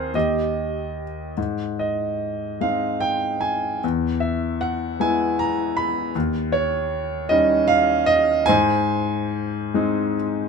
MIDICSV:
0, 0, Header, 1, 2, 480
1, 0, Start_track
1, 0, Key_signature, -4, "major"
1, 0, Tempo, 819672
1, 808, Time_signature, 6, 3, 24, 8
1, 2246, Tempo, 776197
1, 5126, Tempo, 852273
1, 6248, End_track
2, 0, Start_track
2, 0, Title_t, "Grand piano"
2, 0, Program_c, 0, 0
2, 0, Control_c, 0, 64, 127
2, 0, Note_on_c, 0, 39, 54
2, 0, Note_on_c, 0, 60, 52
2, 0, Note_on_c, 0, 68, 71
2, 0, Note_on_c, 0, 70, 63
2, 0, Note_on_c, 0, 72, 67
2, 62, Note_off_c, 0, 60, 0
2, 65, Note_off_c, 0, 39, 0
2, 80, Note_on_c, 0, 39, 46
2, 89, Note_on_c, 0, 75, 66
2, 92, Note_off_c, 0, 72, 0
2, 92, Note_on_c, 0, 67, 47
2, 94, Control_c, 0, 64, 0
2, 96, Note_off_c, 0, 70, 0
2, 98, Note_off_c, 0, 68, 0
2, 214, Control_c, 0, 64, 127
2, 605, Note_off_c, 0, 75, 0
2, 783, Note_off_c, 0, 39, 0
2, 787, Note_off_c, 0, 67, 0
2, 805, Note_on_c, 0, 44, 50
2, 814, Control_c, 0, 64, 0
2, 912, Control_c, 0, 64, 127
2, 1050, Note_on_c, 0, 75, 55
2, 1526, Note_on_c, 0, 56, 35
2, 1530, Note_on_c, 0, 77, 68
2, 1532, Note_on_c, 0, 60, 33
2, 1535, Note_on_c, 0, 63, 42
2, 1545, Note_off_c, 0, 75, 0
2, 1754, Note_off_c, 0, 77, 0
2, 1760, Note_on_c, 0, 79, 73
2, 1987, Note_off_c, 0, 79, 0
2, 1994, Note_on_c, 0, 80, 72
2, 2221, Note_off_c, 0, 44, 0
2, 2221, Note_off_c, 0, 80, 0
2, 2222, Note_off_c, 0, 56, 0
2, 2225, Note_off_c, 0, 60, 0
2, 2227, Note_off_c, 0, 63, 0
2, 2247, Note_on_c, 0, 40, 54
2, 2254, Control_c, 0, 64, 0
2, 2378, Control_c, 0, 64, 127
2, 2473, Note_on_c, 0, 76, 57
2, 2707, Note_off_c, 0, 76, 0
2, 2724, Note_on_c, 0, 78, 67
2, 2949, Note_off_c, 0, 78, 0
2, 2965, Note_on_c, 0, 56, 40
2, 2967, Note_on_c, 0, 59, 37
2, 2970, Note_on_c, 0, 64, 51
2, 2972, Note_on_c, 0, 80, 79
2, 3209, Note_on_c, 0, 82, 79
2, 3213, Note_off_c, 0, 80, 0
2, 3440, Note_on_c, 0, 83, 76
2, 3450, Note_off_c, 0, 82, 0
2, 3654, Note_off_c, 0, 40, 0
2, 3654, Note_off_c, 0, 56, 0
2, 3655, Note_off_c, 0, 59, 0
2, 3657, Note_off_c, 0, 64, 0
2, 3661, Note_off_c, 0, 83, 0
2, 3680, Note_on_c, 0, 39, 62
2, 3687, Control_c, 0, 64, 0
2, 3777, Control_c, 0, 64, 127
2, 3909, Note_on_c, 0, 73, 74
2, 4384, Note_on_c, 0, 75, 87
2, 4392, Note_on_c, 0, 55, 51
2, 4394, Note_on_c, 0, 61, 46
2, 4397, Note_on_c, 0, 63, 49
2, 4405, Note_off_c, 0, 73, 0
2, 4613, Note_off_c, 0, 75, 0
2, 4621, Note_on_c, 0, 77, 94
2, 4855, Note_off_c, 0, 77, 0
2, 4861, Note_on_c, 0, 75, 95
2, 5103, Note_off_c, 0, 39, 0
2, 5104, Note_off_c, 0, 55, 0
2, 5104, Note_on_c, 0, 80, 100
2, 5105, Note_off_c, 0, 61, 0
2, 5106, Note_off_c, 0, 63, 0
2, 5115, Note_on_c, 0, 72, 62
2, 5125, Note_off_c, 0, 75, 0
2, 5125, Note_on_c, 0, 44, 72
2, 5134, Control_c, 0, 64, 0
2, 5221, Control_c, 0, 64, 127
2, 5831, Note_on_c, 0, 56, 51
2, 5835, Note_on_c, 0, 60, 44
2, 5836, Note_on_c, 0, 63, 57
2, 6053, Note_off_c, 0, 80, 0
2, 6058, Note_off_c, 0, 72, 0
2, 6248, Note_off_c, 0, 44, 0
2, 6248, Note_off_c, 0, 56, 0
2, 6248, Note_off_c, 0, 60, 0
2, 6248, Note_off_c, 0, 63, 0
2, 6248, End_track
0, 0, End_of_file